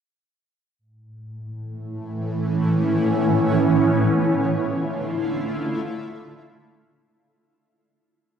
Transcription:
ambient pad
0.79 A2
1.42 E3
1.88 C#4
2.10 B3
3.91 D3
4.08 E4
4.18 F4
4.45 A3

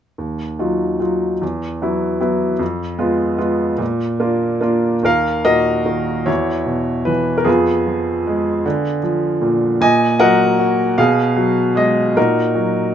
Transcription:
grand piano
0.18 D#2
0.59 F#3 D#4 F4
1.00 F#3 D#4 F4
1.42 E2
1.82 F#3 B3 E4
2.21 F#3 B3 E4
2.59 F2
2.98 G#3 B3 F4
3.38 G#3 B3 F4
3.78 A#2
4.20 A#3 D4 F4
4.61 A#3 D4 F4
5.03 D#2 A#4 F5
5.45 A#2 F#4 A#4 D#5
5.85 D#3
6.26 E2 E4 F#4 C#5
6.66 B2
7.05 E3 B4
7.38 A#4
7.45 F2 B3 F4 G#4
7.87 F3
8.27 G#3
8.66 D3
9.03 F3
9.42 A#2
9.81 A#2 D#5 G#5
10.20 F#3 A#4 D#5 F#5
10.59 F#4
10.98 B2 G#4 F5
11.37 F#3
11.75 G#3 D#5
12.15 A#2 D#4 F#4 A#4
12.55 F#3

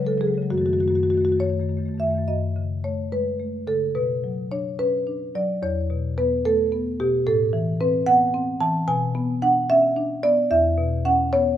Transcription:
marimba
0.00 C#3 F#3
0.05 C#3 G#3 A4
0.10 F#3 G#3
0.18 C#3 F#3 G#3 G#4
0.25 C#3 F#3 G#3
0.34 C#3 F#3 G#3
0.42 F#3 G#3
0.50 F#2 D#3 A3 F#4
0.58 F#2 D#3 A3 F#4
0.66 D#3 A3 F#4
0.71 F#2 A3 F#4
0.79 F#2 D#3 A3 F#4
0.87 F#2 D#3 A3 F#4
0.95 D#3 A3 F#4
1.01 F#2 F#4
1.05 D#3 A3
1.10 F#2 A3 F#4
1.15 D#3 F#4
1.21 F#2 D#3 A3
1.25 A3 F#4
1.32 F#2 D#3 F#4
1.37 F#2 A3 C#5
1.41 D#3
1.46 A3
1.50 F#2 D#3 A3
1.59 F#2 D#3 A3
1.68 F#2 D#3 A3
1.77 F#2 D#3 A3
1.85 F#2 D#3 A3
1.94 F#2 D#3 A3
2.00 A3 E5
2.07 F#2 D#3 A3
2.15 F#2 D#3 A3
2.28 F#2 D#5
2.56 C#3
2.84 A3 C#5
3.12 G#3 B4
3.40 A3
3.67 C#3 A4
3.95 B2 B4
4.24 F#3
4.52 D4 C#5
4.79 C#4 B4
5.07 D4
5.35 F#3 D5
5.62 E2 C#5
5.90 B2
6.18 B3 B4
6.45 A3 A4
6.72 B3
7.00 B2 G4
7.27 A2 A4
7.53 E3
7.81 C4 B4
8.06 B3 F#5
8.34 C4
8.60 E3 A5
8.88 B2 G#5
9.15 B3
9.42 D4 F#5
9.70 C#4 E5
9.96 D4
10.23 B3 D5
10.51 E2 E5
10.78 B2
11.05 C#4 F#5
11.33 B3 C#5

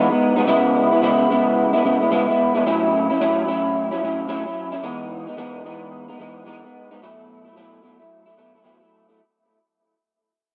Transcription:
clean electric guitar
0.10 G#3 B3 D#4
0.36 G#3 B3 D#4
0.47 C#3 G#3 B3 E4
0.91 G#3 B3 E4
1.02 C#3 G#3 B3 E4
1.30 C#3 G#3 B3 E4
1.73 G#3 B3 E4
1.84 C#3 G#3 B3 E4
2.00 G#3 B3 E4
2.11 C#3 G#3 B3 E4
2.28 G#3 B3 E4
2.54 G#3 B3 E4
2.66 A2 F#3 C#4 E4
3.10 F#3 C#4 E4
3.21 A2 F#3 C#4 E4
3.47 A2 F#3 C#4 E4
3.91 F#3 C#4 E4
4.02 A2 F#3 C#4 E4
4.28 A2 F#3 C#4 E4
4.45 F#3 C#4 E4
4.72 F#3 C#4 E4
4.83 E3 G#3 B3 D#4
5.27 G#3 B3 D#4
5.37 E3 G#3 B3 D#4
5.64 E3 G#3 B3 D#4
6.08 G#3 B3 D#4
6.19 E3 G#3 B3 D#4
6.45 E3 G#3 B3 D#4
6.62 G#3 B3 D#4
6.91 G#3 B3 D#4
7.02 B2 F#3 A3 E4
7.44 F#3 A3 E4
7.56 B2 F#3 A3 E4
7.82 B2 F#3 A3 E4
7.99 F#3 A3 E4
8.26 F#3 A3 E4
8.36 B2 F#3 A3 E4
8.54 F#3 A3 E4
8.64 B2 F#3 A3 E4
8.80 F#3 A3 E4
9.09 F#3 A3 E4

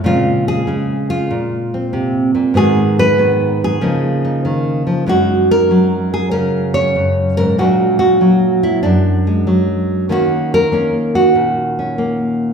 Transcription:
nylon-string guitar
0.04 A#2 C#3 G#3 C4 F4
0.48 G#4
0.67 C#3 G#3
1.10 F4
1.31 A#2
1.74 C4
1.93 C3
2.35 A#2
2.54 G#2 D#3 B3 F#4 G#4
2.99 B4
3.18 D#3 B3
3.64 G#4
3.81 C#3 F3 A#3 D#4
4.25 D#4
4.45 D#3
4.87 F3
5.06 F#2 F#3 G#3 D#4 F#4
5.51 A#4
5.71 F#3
6.14 G#4
6.31 C#3 A#4
6.74 C#5
6.96 F#2
7.37 G#2 A#4
7.58 A#2 F#3 G#3 D4 F#4
7.99 F#4
8.21 F#3
8.63 E4
8.83 F#2 D4
9.27 G#3
9.47 F#3
10.09 D#3 A#3 C#4 F#4
10.54 A#4
10.72 A#3 C#4
11.15 F#4
11.35 A#2
11.79 C#4
11.98 A#3

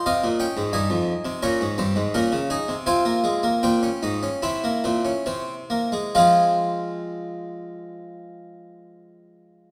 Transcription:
harpsichord
0.06 C3 C4 D#5 F5
0.24 A#2
0.40 C#4 G5
0.57 G#2
0.73 G2 D#4 G#5
0.90 F2
1.25 C3
1.43 A#2 C#4 C#5 A#5
1.61 G#2
1.78 G2 C4
1.96 G#2
2.14 A#2 C#4 A#4
2.32 C#3
2.50 D#4 G#4
2.68 C3
2.86 C3 C4 F4 G#5
3.05 A#3
3.24 G#3
3.43 A#3
3.63 A#2 C4 G5
3.83 C#4
4.03 G#2 D#4
4.23 C#4
4.42 C3 C4 E4
4.64 A#3
4.84 A#2 C4
5.05 C#4
5.26 C3 C4
5.70 A#3
5.92 G#3
6.15 F3 G#3 C4 F4 G#4 F5

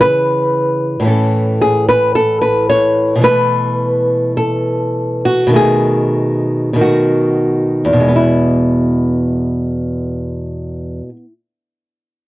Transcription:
nylon-string guitar
Already playing: C#3 E3 C#4
0.01 B4
1.00 A2 E3
1.05 C#4 A4
1.61 G#4
1.89 B4
2.15 A4
2.42 B4
2.70 C#5
3.16 B2 E3
3.21 A3 B4
4.37 A4
5.25 F#4
5.47 B2 D#3
5.53 A3 G#4
6.73 B2 D#3
6.79 A3 F#4
7.85 E2
7.93 B2
8.00 G#3
8.08 B3
8.16 E4

